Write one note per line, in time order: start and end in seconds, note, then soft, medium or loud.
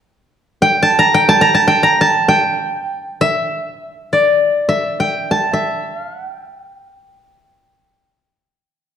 0.62 1.14 G5 medium
0.83 1.05 A5 medium
0.99 1.35 A#5 loud
1.14 1.67 G5 medium
1.29 1.47 A5 medium
1.41 1.60 A#5 medium
1.54 1.89 A5 medium
1.68 2.28 G5 medium
1.83 2.07 A#5 medium
2.01 3.27 A5 medium
2.28 3.63 G5 medium
3.21 4.68 E5 medium
4.13 5.73 D5 medium
4.69 5.53 E5 medium
5.00 5.53 G5 medium
5.31 6.57 A5 medium
5.53 5.94 E5 medium
5.94 6.13 F5 medium
6.13 6.33 F#5 medium
6.33 8.08 G5 medium